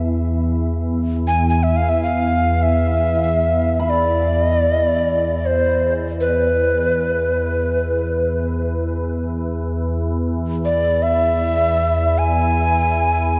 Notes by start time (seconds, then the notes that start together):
Already playing: E2
1.28 G#5
1.49 G#5
1.63 E5
1.76 F5
1.89 E5
2.03 F5
2.62 E5
3.79 B5
3.90 D5
4.43 D#5
4.57 D5
4.73 D#5
4.87 D5
5.39 D5
5.45 C5
5.56 E2
6.20 B4
10.65 D5
11.03 E5
12.18 G#5